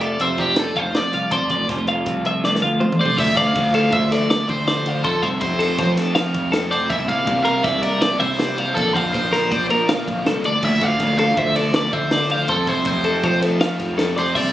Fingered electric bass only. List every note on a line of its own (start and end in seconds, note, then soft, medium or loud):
0.00 0.18 F1 loud
0.21 0.73 F1 medium
0.76 0.93 F1 medium
1.14 1.33 C2 loud
1.32 1.49 F1 loud
1.51 1.68 F1 loud
1.69 2.04 F1 loud
2.06 2.59 C2 medium
2.61 2.79 D2 loud
3.18 3.36 D2 loud
3.38 3.55 D2 loud
3.56 3.90 D2 loud
3.93 4.45 D2 medium
4.49 5.01 D3 loud
5.05 5.22 F2 loud
5.23 5.41 C2 loud
5.42 5.76 F2 loud
5.79 6.31 F3 medium
6.35 6.87 F2 loud
6.90 7.08 C2 loud
7.09 7.27 C2 loud
7.27 7.62 C2 loud
7.65 8.17 C2 loud
8.21 8.73 C3 loud
8.77 8.94 A#1 loud
8.96 9.13 F2 loud
9.14 9.49 A#1 loud
9.52 10.04 A#2 medium
10.08 10.25 A#1 loud
10.27 10.43 C2 medium
10.45 10.61 D2 medium
10.64 10.81 D2 loud
10.82 10.99 D2 loud
11.01 11.35 D2 loud
11.37 11.89 D2 loud
11.93 12.45 D3 loud
12.49 12.66 F2 loud
12.67 12.85 C2 medium
12.86 13.21 F2 loud
13.24 13.76 F3 medium
13.80 14.32 F2 loud
14.36 14.53 C2 loud